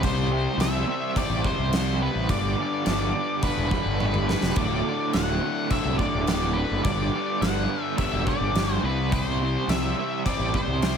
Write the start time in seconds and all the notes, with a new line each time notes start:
Already playing: C2 E4 G4 C5 E5
0.02 C3 G3 C4 C5, kick, crash
0.30 C3 G3 C4
0.57 C2 C3 G3 C4 E5, snare, crash
0.87 C3 G3 C4
1.14 C3 G3 C4 D5, kick, crash
1.29 A1
1.43 C3 G3 C4 C5, kick
1.58 C2
1.72 C3 G3 C4, snare, crash
2.00 C3 G3 C4 B4
2.15 A1
2.27 G1 G2 D3 G3 D4 G4 B4 D5, kick, crash
2.55 G2 D3 G3
2.83 G1 G2 D3 G3, snare, crash
3.13 G2 D3 G3
3.42 G2 D3 G3 B4, kick, crash
3.57 E1
3.71 G2 D3 G3, kick
3.85 G1
4.00 G2 D3 G3, high tom
4.14 mid tom
4.28 G2 D3 G3 B4, snare
4.42 E1, snare
4.56 D1 D2 A2 D3 D4 F#4 A4 D5, kick, crash
4.84 D2 A2 D3
5.12 D1 D2 A2 D3 F#5, snare, crash
5.39 D2 A2 D3
5.69 D2 A2 D3 E5, kick, crash
5.85 C2
5.98 D2 A2 D3 D5, kick
6.14 D1
6.27 D2 A2 D3, snare, crash
6.54 D2 A2 D3 B4
6.71 F#1
6.83 G1 G2 D3 G3 D4 G4 B4 D5, kick, crash
7.15 G2 D3 G3
7.41 G1 G2 D3 G3 F#5, snare, crash
7.70 G2 D3 G3
7.83 E5
7.97 G2 D3 G3 E5, kick, crash
8.13 E1
8.26 G2 D3 G3 D5, kick
8.41 G1
8.55 G2 D3 G3, snare, crash
8.73 C5
8.83 C2 C3 G3 C4 E4 G4 B4 C5 E5
9.11 C3 G3 C4 B4, kick, crash
9.24 C5
9.39 C3 G3 C4
9.67 C2 C3 G3 C4 E5, snare, crash
9.95 C3 G3 C4
10.24 C3 G3 C4 D5, kick, crash
10.39 A1
10.53 C3 G3 C4 C5, kick
10.67 C2
10.82 C3 G3 C4, snare, crash